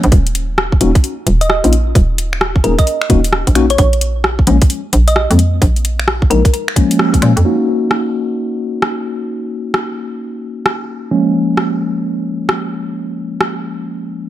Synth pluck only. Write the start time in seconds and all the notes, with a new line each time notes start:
1.41 D#5
1.50 D#5
2.64 A#4
2.79 D#5
3.70 C#5
3.79 C#5
5.08 D#5
5.16 D#5
6.31 A#4